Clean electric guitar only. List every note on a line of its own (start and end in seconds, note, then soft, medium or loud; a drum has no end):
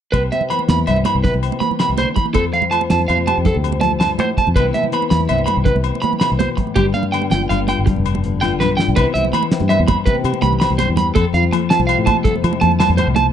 0.12 0.22 B4 medium
0.32 0.42 E5 medium
0.50 0.60 B5 medium
0.70 0.79 B5 medium
0.88 0.97 E5 medium
1.06 1.15 B5 medium
1.24 1.33 B4 medium
1.60 1.70 B5 medium
1.80 1.90 B5 medium
1.98 2.08 C5 medium
2.16 2.25 B5 medium
2.34 2.44 A4 medium
2.54 2.63 F5 medium
2.71 2.81 A5 medium
2.91 3.00 A5 medium
3.08 3.18 F5 medium
3.27 3.37 A5 medium
3.46 3.56 A4 medium
3.81 3.91 A5 medium
4.00 4.10 A5 medium
4.20 4.29 C5 medium
4.38 4.48 A5 medium
4.56 4.65 B4 medium
4.74 4.84 E5 medium
4.94 5.03 B5 medium
5.10 5.20 B5 medium
5.29 5.39 E5 medium
5.46 5.56 B5 medium
5.65 5.75 B4 medium
6.02 6.12 B5 medium
6.20 6.30 B5 medium
6.39 6.49 C5 medium
6.57 muted clean electric guitar stroke medium
6.75 6.85 G4 medium
6.94 7.04 F5 medium
7.12 7.22 G5 medium
7.31 7.41 G5 medium
7.49 7.59 F5 medium
7.69 7.78 G5 medium
7.86 muted clean electric guitar stroke medium
8.41 8.51 G5 medium
8.60 8.70 B4 medium
8.77 8.87 G5 medium
8.96 9.06 B4 loud
9.14 9.24 E5 medium
9.33 9.43 B5 medium
9.69 9.79 E5 medium
9.88 9.97 B5 medium
10.06 10.15 B4 medium
10.42 10.52 B5 medium
10.60 10.70 B5 medium
10.78 10.88 C5 medium
10.97 11.07 B5 medium
11.15 11.25 A4 loud
11.34 11.44 F5 medium
11.52 muted clean electric guitar stroke medium
11.70 11.80 A5 medium
11.87 11.97 F5 medium
12.06 12.16 A5 medium
12.24 12.34 A4 medium
12.61 12.71 A5 medium
12.80 12.89 A5 loud
12.97 13.07 C5 medium
13.16 13.26 A5 medium